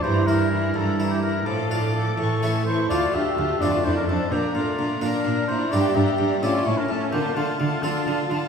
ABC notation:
X:1
M:6/8
L:1/16
Q:3/8=85
K:Dm
V:1 name="Violin section"
b2 b2 b2 b2 b2 b2 | d'2 d'2 d'2 ^c'2 c'2 c'2 | a2 a2 a2 a2 a2 a2 | b2 b2 b2 b2 b2 b2 |
b2 b2 b2 a2 a2 a2 | a2 a2 a2 a2 a2 a2 |]
V:2 name="Oboe"
c2 B4 A3 G B2 | A8- A2 c2 | d2 e4 d2 c B A2 | G2 F4 B4 c2 |
d2 e4 d2 ^c B A2 | G2 F4 A4 z2 |]
V:3 name="Violin section"
E2 E2 E2 E2 E2 E2 | A2 A2 A2 A2 A2 [EA]2 | F2 G4 F2 E D C2 | B,2 A,4 D4 E2 |
G2 G4 F2 E D ^C2 | B,2 A,4 D4 z2 |]
V:4 name="Viola section"
E,2 E,2 E,2 E,2 E,2 E,2 | F,2 F,2 F,2 E,2 E,2 E,2 | F2 F2 F2 D2 D2 D2 | D2 D2 D2 D2 D2 D2 |
D2 D2 D2 ^C2 C2 C2 | F2 F2 F2 F2 F2 F2 |]
V:5 name="Harpsichord"
z2 E6 E4 | z2 [DF]4 z2 [A,^CE]4 | [A,DF]6 [A,D]6 | z6 [B,D]6 |
[B,DE]6 [^CE]6 | z6 [DF]6 |]
V:6 name="Harpsichord" clef=bass
G,,6 G,,6 | A,,6 A,,6 | D,,2 D,,2 D,,2 F,,2 F,,2 F,,2 | B,,2 B,,2 B,,2 B,,2 B,,2 B,,2 |
G,,2 G,,2 G,,2 A,,2 A,,2 A,,2 | D,2 D,2 D,2 D,2 D,2 D,2 |]
V:7 name="Cello section" clef=bass
G,,6 G,,6 | A,,6 A,,6 | D,,2 D,,2 D,,2 F,,2 F,,2 F,,2 | B,,2 B,,2 B,,2 B,,2 B,,2 B,,2 |
G,,2 G,,2 G,,2 A,,2 A,,2 A,,2 | D,2 D,2 D,2 D,2 D,2 D,2 |]